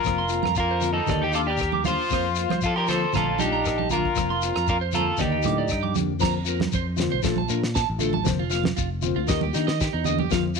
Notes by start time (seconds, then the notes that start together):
Already playing: F4 A#4
0.04 F1 F3 A#3 C4 F4, kick, cross-stick, shekere
0.18 C6
0.28 A#3 C4 F4, closed hi-hat, shekere
0.43 F2 A#5, cross-stick, high conga
0.55 F4, kick, shekere
0.60 F4 A#4
0.71 C5
0.81 A#3 C4 F4, muted clean electric guitar stroke, closed hi-hat, low conga, shekere
0.93 D#4 A4
1.06 D#2 D#3 A#3 D4 G4 D5, kick, cross-stick, low conga, shekere
1.22 D#4 G4 G5
1.26 D#4
1.32 A#3 D4 F4 G4 A4 D6, closed hi-hat, shekere
1.39 F4
1.47 G4 A#4 D5
1.58 G5, kick, cross-stick, shekere
1.72 D6, high conga
1.84 A#3 D4 F4 G4 C5, closed hi-hat, high conga, low conga, shekere
1.88 F4
2.10 F2 F3 A#3 C4 F4 C5, kick, cross-stick, shekere
2.35 C4 F4, closed hi-hat, shekere
2.39 A#3
2.50 F3 C5, cross-stick, high conga
2.62 F4, kick, shekere
2.66 A4
2.76 G4 A#4 C6
2.88 A#3 C4 F4 A4 C5, cross-stick, closed hi-hat, low conga, shekere
3.13 A#1 F3 A3 D4 F4 A#5, muted nylon-string guitar stroke, kick, cross-stick, low conga, shekere
3.17 A4
3.39 A3 D4 D#4 F4 G4 A5, closed hi-hat, high conga, shekere
3.53 A#5
3.65 A#4, kick, cross-stick, shekere
3.78 A5, high conga
3.90 A3 D4 F4 A#4 A#5, closed hi-hat, high conga, low conga, shekere
3.95 F4
4.05 kick
4.16 F1 F3 A#3 C4 F4, kick, cross-stick, shekere
4.30 C6
4.42 A#3 C4 F4, closed hi-hat, shekere
4.55 F2 A#5, cross-stick
4.67 F4 A#4, kick, shekere
4.81 C5
4.92 C4 F4 A4 A#5, closed hi-hat, high conga, low conga, shekere
4.96 A#3
5.17 D#2 D#3 A#3 D4 D#4 G4 D5, kick, cross-stick, low conga, shekere
5.23 D#4
5.32 G5
5.43 A2 A#3 D4 G4 D6, high conga, low conga, shekere
5.47 closed hi-hat
5.58 D5
5.68 G2 G5, kick, cross-stick, shekere
5.83 D6, high conga
5.95 F2 A#3 D4 G4, closed hi-hat, high conga, low conga, shekere
6.19 F2 F3 A#3 C4 F4 A#5, kick, low conga, shekere
6.23 snare, crash
6.44 A#3 C4 F4 A#4, shekere
6.60 snare, high conga
6.72 F2 C5, kick, shekere
6.96 A#3 C4 F4, snare, low conga, shekere
7.12 B1 C5
7.23 A#1 F3 A3 D4 F4 A4, kick, snare, shekere
7.36 A5, high conga
7.48 A#2 A3 D4 F4 A#4, shekere
7.63 snare
7.75 A5, kick, snare, shekere
7.90 A1
7.98 A3 D4 F4 A4, low conga, shekere
8.13 A5, high conga
8.23 F3 A#3 C4 F4, kick, snare, low conga, shekere
8.28 F1
8.39 F4
8.50 A#3 C4 F4 F5, snare, shekere
8.64 snare, high conga
8.77 F1 F4, kick, shekere
9.02 A#3 C4 F4, low conga, shekere
9.16 D2 F4
9.27 D#2 D#3 A#3 D4 G4 D#5, kick, snare, shekere
9.41 G4, high conga
9.53 D#3 A#3 D4 D#4 G4, snare, shekere
9.67 D#5, snare
9.80 G4, kick, snare, shekere
9.93 E2 D#4
10.04 A#3 D4 G4 D#5, low conga, shekere
10.18 G4, high conga
10.30 F2 F3 A#3 C4 F4 F5, kick, snare, low conga, shekere
10.55 F4, shekere